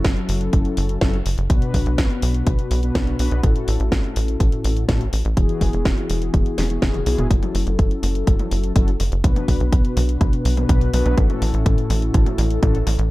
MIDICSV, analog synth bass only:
0, 0, Header, 1, 2, 480
1, 0, Start_track
1, 0, Key_signature, 3, "minor"
1, 0, Tempo, 483871
1, 1487, Time_signature, 4, 2, 24, 8
1, 13003, End_track
2, 0, Start_track
2, 0, Title_t, "Analog synth bass"
2, 0, Program_c, 0, 38
2, 47, Note_on_c, 0, 30, 88
2, 149, Note_off_c, 0, 30, 0
2, 286, Note_on_c, 0, 30, 101
2, 489, Note_off_c, 0, 30, 0
2, 527, Note_on_c, 0, 30, 83
2, 629, Note_off_c, 0, 30, 0
2, 767, Note_on_c, 0, 30, 102
2, 970, Note_off_c, 0, 30, 0
2, 1006, Note_on_c, 0, 30, 101
2, 1209, Note_off_c, 0, 30, 0
2, 1247, Note_on_c, 0, 30, 94
2, 1349, Note_off_c, 0, 30, 0
2, 1366, Note_on_c, 0, 30, 94
2, 1468, Note_off_c, 0, 30, 0
2, 1486, Note_on_c, 0, 35, 99
2, 1588, Note_off_c, 0, 35, 0
2, 1726, Note_on_c, 0, 35, 98
2, 1828, Note_off_c, 0, 35, 0
2, 1848, Note_on_c, 0, 35, 88
2, 1949, Note_off_c, 0, 35, 0
2, 1967, Note_on_c, 0, 35, 86
2, 2069, Note_off_c, 0, 35, 0
2, 2208, Note_on_c, 0, 35, 101
2, 2410, Note_off_c, 0, 35, 0
2, 2447, Note_on_c, 0, 35, 83
2, 2549, Note_off_c, 0, 35, 0
2, 2687, Note_on_c, 0, 35, 97
2, 2890, Note_off_c, 0, 35, 0
2, 2927, Note_on_c, 0, 35, 102
2, 3130, Note_off_c, 0, 35, 0
2, 3169, Note_on_c, 0, 35, 92
2, 3270, Note_off_c, 0, 35, 0
2, 3289, Note_on_c, 0, 35, 96
2, 3389, Note_off_c, 0, 35, 0
2, 3407, Note_on_c, 0, 33, 100
2, 3509, Note_off_c, 0, 33, 0
2, 3649, Note_on_c, 0, 33, 98
2, 3750, Note_off_c, 0, 33, 0
2, 3770, Note_on_c, 0, 33, 88
2, 3870, Note_off_c, 0, 33, 0
2, 3887, Note_on_c, 0, 33, 89
2, 3989, Note_off_c, 0, 33, 0
2, 4130, Note_on_c, 0, 33, 102
2, 4331, Note_off_c, 0, 33, 0
2, 4366, Note_on_c, 0, 33, 83
2, 4468, Note_off_c, 0, 33, 0
2, 4609, Note_on_c, 0, 33, 102
2, 4811, Note_off_c, 0, 33, 0
2, 4846, Note_on_c, 0, 33, 105
2, 5050, Note_off_c, 0, 33, 0
2, 5088, Note_on_c, 0, 33, 92
2, 5189, Note_off_c, 0, 33, 0
2, 5209, Note_on_c, 0, 33, 96
2, 5310, Note_off_c, 0, 33, 0
2, 5327, Note_on_c, 0, 28, 97
2, 5429, Note_off_c, 0, 28, 0
2, 5566, Note_on_c, 0, 28, 101
2, 5668, Note_off_c, 0, 28, 0
2, 5688, Note_on_c, 0, 28, 89
2, 5789, Note_off_c, 0, 28, 0
2, 5806, Note_on_c, 0, 28, 85
2, 5908, Note_off_c, 0, 28, 0
2, 6048, Note_on_c, 0, 28, 101
2, 6250, Note_off_c, 0, 28, 0
2, 6287, Note_on_c, 0, 28, 81
2, 6388, Note_off_c, 0, 28, 0
2, 6528, Note_on_c, 0, 28, 100
2, 6731, Note_off_c, 0, 28, 0
2, 6767, Note_on_c, 0, 28, 85
2, 6970, Note_off_c, 0, 28, 0
2, 7006, Note_on_c, 0, 35, 100
2, 7108, Note_off_c, 0, 35, 0
2, 7126, Note_on_c, 0, 28, 84
2, 7228, Note_off_c, 0, 28, 0
2, 7247, Note_on_c, 0, 30, 100
2, 7349, Note_off_c, 0, 30, 0
2, 7486, Note_on_c, 0, 30, 100
2, 7588, Note_off_c, 0, 30, 0
2, 7606, Note_on_c, 0, 30, 85
2, 7708, Note_off_c, 0, 30, 0
2, 7727, Note_on_c, 0, 30, 87
2, 7828, Note_off_c, 0, 30, 0
2, 7965, Note_on_c, 0, 30, 101
2, 8169, Note_off_c, 0, 30, 0
2, 8206, Note_on_c, 0, 30, 84
2, 8308, Note_off_c, 0, 30, 0
2, 8447, Note_on_c, 0, 30, 97
2, 8650, Note_off_c, 0, 30, 0
2, 8686, Note_on_c, 0, 30, 104
2, 8890, Note_off_c, 0, 30, 0
2, 8927, Note_on_c, 0, 30, 91
2, 9029, Note_off_c, 0, 30, 0
2, 9047, Note_on_c, 0, 30, 97
2, 9149, Note_off_c, 0, 30, 0
2, 9167, Note_on_c, 0, 35, 96
2, 9269, Note_off_c, 0, 35, 0
2, 9406, Note_on_c, 0, 35, 97
2, 9508, Note_off_c, 0, 35, 0
2, 9527, Note_on_c, 0, 35, 88
2, 9629, Note_off_c, 0, 35, 0
2, 9646, Note_on_c, 0, 35, 87
2, 9748, Note_off_c, 0, 35, 0
2, 9887, Note_on_c, 0, 35, 102
2, 10090, Note_off_c, 0, 35, 0
2, 10127, Note_on_c, 0, 35, 84
2, 10229, Note_off_c, 0, 35, 0
2, 10368, Note_on_c, 0, 35, 100
2, 10571, Note_off_c, 0, 35, 0
2, 10606, Note_on_c, 0, 35, 103
2, 10810, Note_off_c, 0, 35, 0
2, 10847, Note_on_c, 0, 35, 95
2, 10949, Note_off_c, 0, 35, 0
2, 10967, Note_on_c, 0, 35, 95
2, 11069, Note_off_c, 0, 35, 0
2, 11086, Note_on_c, 0, 33, 99
2, 11188, Note_off_c, 0, 33, 0
2, 11327, Note_on_c, 0, 33, 98
2, 11429, Note_off_c, 0, 33, 0
2, 11446, Note_on_c, 0, 33, 88
2, 11548, Note_off_c, 0, 33, 0
2, 11566, Note_on_c, 0, 33, 86
2, 11668, Note_off_c, 0, 33, 0
2, 11804, Note_on_c, 0, 33, 103
2, 12009, Note_off_c, 0, 33, 0
2, 12046, Note_on_c, 0, 33, 82
2, 12148, Note_off_c, 0, 33, 0
2, 12284, Note_on_c, 0, 33, 100
2, 12489, Note_off_c, 0, 33, 0
2, 12525, Note_on_c, 0, 33, 106
2, 12729, Note_off_c, 0, 33, 0
2, 12764, Note_on_c, 0, 33, 93
2, 12867, Note_off_c, 0, 33, 0
2, 12882, Note_on_c, 0, 33, 96
2, 12986, Note_off_c, 0, 33, 0
2, 13003, End_track
0, 0, End_of_file